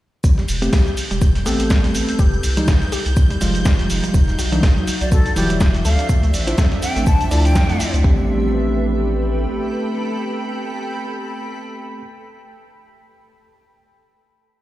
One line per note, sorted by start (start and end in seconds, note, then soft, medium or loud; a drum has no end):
0.24 0.45 A1 medium
0.24 8.06 G6 medium
0.24 kick loud
0.24 shaker medium
0.24 shaker soft
0.38 0.42 G3 medium
0.38 snare soft
0.38 shaker soft
0.48 0.69 E1 medium
0.48 2.19 A4 medium
0.48 open hi-hat loud
0.48 shaker medium
0.58 2.19 B4 medium
0.62 0.76 A3 medium
0.62 0.76 B3 medium
0.62 0.76 C4 medium
0.62 0.76 G4 medium
0.62 closed hi-hat medium
0.62 shaker soft
0.73 0.84 C2 medium
0.73 0.79 G4 medium
0.73 kick loud
0.73 snare loud
0.73 open hi-hat medium
0.73 shaker soft
0.87 shaker soft
0.97 open hi-hat loud
0.97 shaker medium
1.11 1.43 E1 medium
1.11 1.16 G3 medium
1.11 closed hi-hat medium
1.11 shaker soft
1.22 kick loud
1.22 shaker medium
1.22 shaker soft
1.35 snare soft
1.35 closed hi-hat medium
1.35 shaker soft
1.46 1.92 A1 medium
1.46 2.18 A3 medium
1.46 2.18 B3 medium
1.46 2.18 C4 medium
1.46 1.52 G4 medium
1.46 2.18 A4 loud
1.46 open hi-hat medium
1.46 shaker medium
1.60 closed hi-hat soft
1.60 closed hi-hat medium
1.60 shaker soft
1.70 kick loud
1.70 snare loud
1.70 shaker medium
1.70 shaker soft
1.84 1.89 G3 medium
1.84 snare soft
1.84 closed hi-hat medium
1.84 shaker soft
1.95 2.06 A1 medium
1.95 open hi-hat loud
1.95 shaker medium
2.08 snare soft
2.08 closed hi-hat medium
2.08 shaker soft
2.19 2.40 F1 loud
2.19 4.14 D#4 medium
2.19 2.25 G4 medium
2.19 kick loud
2.19 shaker medium
2.19 shaker soft
2.33 shaker soft
2.43 2.65 C2 medium
2.43 open hi-hat loud
2.43 shaker medium
2.57 2.71 F3 medium
2.57 2.62 G3 medium
2.57 2.71 G3 medium
2.57 2.71 G#3 medium
2.57 2.71 D#4 medium
2.57 closed hi-hat medium
2.57 closed hi-hat soft
2.57 shaker soft
2.68 2.79 G#1 medium
2.68 kick loud
2.68 snare loud
2.68 shaker medium
2.68 shaker soft
2.82 snare soft
2.82 shaker soft
2.92 2.98 G4 medium
2.92 open hi-hat loud
2.92 shaker medium
3.06 3.38 C2 medium
3.06 closed hi-hat medium
3.06 shaker soft
3.17 kick loud
3.17 shaker medium
3.17 shaker soft
3.30 3.35 G3 medium
3.30 closed hi-hat medium
3.30 shaker soft
3.41 3.87 F1 medium
3.41 4.13 F3 medium
3.41 4.13 G3 medium
3.41 4.13 G#3 medium
3.41 4.13 F4 loud
3.41 open hi-hat loud
3.41 shaker medium
3.55 closed hi-hat medium
3.55 shaker soft
3.65 3.72 G4 medium
3.65 kick loud
3.65 snare loud
3.65 shaker medium
3.65 shaker soft
3.79 snare soft
3.79 closed hi-hat soft
3.79 shaker soft
3.90 4.01 F1 medium
3.90 open hi-hat loud
3.90 shaker medium
4.04 4.08 G3 medium
4.04 closed hi-hat medium
4.04 shaker soft
4.14 4.35 E1 loud
4.14 8.05 D4 medium
4.14 5.83 F#4 medium
4.14 8.01 D5 medium
4.14 8.01 E5 medium
4.14 kick loud
4.14 shaker medium
4.14 shaker soft
4.26 5.85 F#4 loud
4.26 snare soft
4.26 shaker soft
4.39 4.60 B1 medium
4.39 4.45 F#4 medium
4.39 8.05 E5 medium
4.39 open hi-hat loud
4.39 shaker medium
4.52 4.66 E3 medium
4.52 4.66 F#3 medium
4.52 4.66 G3 medium
4.52 4.66 D4 medium
4.52 closed hi-hat medium
4.52 shaker soft
4.63 4.75 G1 medium
4.63 kick loud
4.63 snare loud
4.63 open hi-hat medium
4.63 shaker soft
4.77 4.81 F#3 medium
4.77 shaker soft
4.87 open hi-hat loud
4.87 shaker medium
5.01 5.33 B1 medium
5.01 5.10 D5 medium
5.01 closed hi-hat medium
5.01 shaker soft
5.12 5.18 F#4 medium
5.12 5.33 A4 medium
5.12 kick loud
5.12 shaker medium
5.12 shaker soft
5.26 snare soft
5.26 closed hi-hat medium
5.26 shaker soft
5.36 5.82 E1 medium
5.36 5.84 E3 medium
5.36 5.84 F#3 medium
5.36 5.84 G3 medium
5.36 5.84 E4 loud
5.36 5.58 G4 medium
5.36 open hi-hat loud
5.36 shaker medium
5.50 5.55 F#3 medium
5.50 closed hi-hat soft
5.50 closed hi-hat medium
5.50 shaker soft
5.61 kick loud
5.61 snare loud
5.61 shaker medium
5.61 shaker soft
5.74 snare soft
5.74 closed hi-hat soft
5.74 shaker soft
5.85 5.96 D2 medium
5.85 8.02 F3 medium
5.85 8.02 C4 medium
5.85 5.91 A4 medium
5.85 6.06 F5 medium
5.85 open hi-hat loud
5.85 shaker medium
5.99 snare medium
5.99 closed hi-hat medium
5.99 shaker soft
6.09 6.30 D2 loud
6.09 kick loud
6.09 shaker medium
6.09 shaker soft
6.23 6.28 A3 medium
6.23 8.04 C6 medium
6.23 closed hi-hat soft
6.23 shaker soft
6.29 8.04 F3 medium
6.34 6.55 A1 medium
6.34 open hi-hat loud
6.34 shaker medium
6.47 6.61 D4 medium
6.47 6.61 E4 medium
6.47 6.61 F4 medium
6.47 6.61 C5 medium
6.47 closed hi-hat soft
6.47 closed hi-hat medium
6.47 shaker soft
6.58 6.70 F2 medium
6.58 6.64 A4 medium
6.58 kick loud
6.58 snare loud
6.58 shaker medium
6.58 shaker soft
6.72 snare medium
6.72 shaker soft
6.82 7.05 G5 medium
6.82 open hi-hat loud
6.82 shaker medium
6.96 7.29 A1 medium
6.96 7.01 A3 medium
6.96 closed hi-hat medium
6.96 shaker soft
7.07 7.42 A5 medium
7.07 kick loud
7.07 shaker medium
7.07 shaker soft
7.21 closed hi-hat soft
7.21 shaker soft
7.31 7.69 D2 loud
7.31 8.03 D4 medium
7.31 8.03 E4 medium
7.31 8.03 F4 medium
7.31 7.37 A4 medium
7.31 8.03 D5 loud
7.31 open hi-hat loud
7.31 shaker medium
7.45 7.94 G5 loud
7.45 closed hi-hat medium
7.45 shaker soft
7.56 kick loud
7.56 snare loud
7.56 shaker medium
7.56 shaker soft
7.69 7.78 F2 medium
7.69 7.74 A3 medium
7.69 snare soft
7.69 closed hi-hat soft
7.69 shaker soft
7.80 open hi-hat loud
7.80 shaker medium
7.94 8.03 D2 medium
7.94 closed hi-hat medium
7.94 shaker soft
8.04 9.47 A1 loud
8.04 8.27 G3 medium
8.04 12.01 A3 medium
8.04 12.01 B3 medium
8.04 12.01 C4 medium
8.04 12.01 G4 medium
8.04 12.01 B4 medium
8.04 kick loud
8.13 12.09 A4 medium
8.20 12.17 G5 medium
8.27 12.23 B5 medium